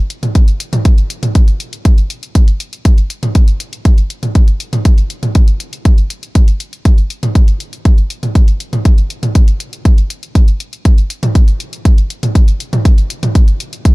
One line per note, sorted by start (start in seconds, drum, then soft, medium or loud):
0.10 closed hi-hat medium
0.23 closed hi-hat soft
0.23 mid tom medium
0.35 kick loud
0.35 closed hi-hat medium
0.48 closed hi-hat soft
0.60 closed hi-hat medium
0.73 closed hi-hat soft
0.73 mid tom medium
0.85 kick loud
0.85 closed hi-hat medium
0.98 closed hi-hat soft
1.10 closed hi-hat soft
1.23 closed hi-hat soft
1.23 mid tom medium
1.35 kick loud
1.35 closed hi-hat medium
1.48 closed hi-hat soft
1.60 closed hi-hat medium
1.73 closed hi-hat soft
1.85 kick loud
1.85 closed hi-hat medium
1.98 closed hi-hat soft
2.10 closed hi-hat medium
2.23 closed hi-hat soft
2.35 kick loud
2.35 closed hi-hat medium
2.48 closed hi-hat soft
2.60 closed hi-hat medium
2.73 closed hi-hat soft
2.85 kick loud
2.85 closed hi-hat medium
2.98 closed hi-hat soft
3.10 closed hi-hat soft
3.23 closed hi-hat soft
3.23 mid tom medium
3.35 kick loud
3.35 closed hi-hat medium
3.48 closed hi-hat soft
3.60 closed hi-hat soft
3.73 closed hi-hat soft
3.85 kick loud
3.85 closed hi-hat medium
3.98 closed hi-hat soft
4.10 closed hi-hat medium
4.23 closed hi-hat soft
4.23 mid tom medium
4.35 kick loud
4.35 closed hi-hat medium
4.48 closed hi-hat soft
4.60 closed hi-hat medium
4.73 closed hi-hat soft
4.73 mid tom medium
4.85 kick loud
4.85 closed hi-hat medium
4.98 closed hi-hat soft
5.10 closed hi-hat soft
5.23 closed hi-hat soft
5.23 mid tom medium
5.35 kick loud
5.35 closed hi-hat medium
5.48 closed hi-hat soft
5.60 closed hi-hat soft
5.73 closed hi-hat soft
5.85 kick loud
5.85 closed hi-hat medium
5.98 closed hi-hat soft
6.10 closed hi-hat medium
6.23 closed hi-hat soft
6.35 kick loud
6.35 closed hi-hat medium
6.48 closed hi-hat soft
6.60 closed hi-hat medium
6.73 closed hi-hat soft
6.85 kick loud
6.85 closed hi-hat medium
6.98 closed hi-hat soft
7.10 closed hi-hat soft
7.23 closed hi-hat soft
7.23 mid tom medium
7.35 kick loud
7.35 closed hi-hat medium
7.48 closed hi-hat soft
7.60 closed hi-hat soft
7.73 closed hi-hat soft
7.85 kick loud
7.85 closed hi-hat medium
7.98 closed hi-hat soft
8.10 closed hi-hat soft
8.23 closed hi-hat soft
8.23 mid tom medium
8.35 kick loud
8.35 closed hi-hat medium
8.48 closed hi-hat soft
8.60 closed hi-hat medium
8.73 closed hi-hat soft
8.73 mid tom medium
8.85 kick loud
8.85 closed hi-hat medium
8.98 closed hi-hat soft
9.10 closed hi-hat soft
9.23 closed hi-hat soft
9.23 mid tom medium
9.35 kick loud
9.35 closed hi-hat medium
9.48 closed hi-hat soft
9.60 closed hi-hat soft
9.73 closed hi-hat soft
9.85 kick loud
9.85 closed hi-hat medium
9.98 closed hi-hat soft
10.10 closed hi-hat soft
10.23 closed hi-hat soft
10.35 kick loud
10.35 closed hi-hat medium
10.48 closed hi-hat soft
10.60 closed hi-hat medium
10.73 closed hi-hat soft
10.85 kick loud
10.85 closed hi-hat medium
10.98 closed hi-hat soft
11.10 closed hi-hat soft
11.23 closed hi-hat soft
11.23 mid tom medium
11.35 kick loud
11.35 closed hi-hat medium
11.48 closed hi-hat soft
11.60 closed hi-hat soft
11.73 closed hi-hat soft
11.85 kick loud
11.85 closed hi-hat medium
11.98 closed hi-hat soft
12.10 closed hi-hat medium
12.23 closed hi-hat soft
12.23 mid tom medium
12.35 kick loud
12.35 closed hi-hat medium
12.48 closed hi-hat soft
12.60 closed hi-hat medium
12.73 closed hi-hat soft
12.73 mid tom medium
12.85 kick loud
12.85 closed hi-hat medium
12.98 closed hi-hat soft
13.10 closed hi-hat medium
13.23 closed hi-hat soft
13.23 mid tom medium
13.35 kick loud
13.35 closed hi-hat medium
13.48 closed hi-hat soft
13.60 closed hi-hat medium
13.73 closed hi-hat soft
13.85 kick loud
13.85 closed hi-hat medium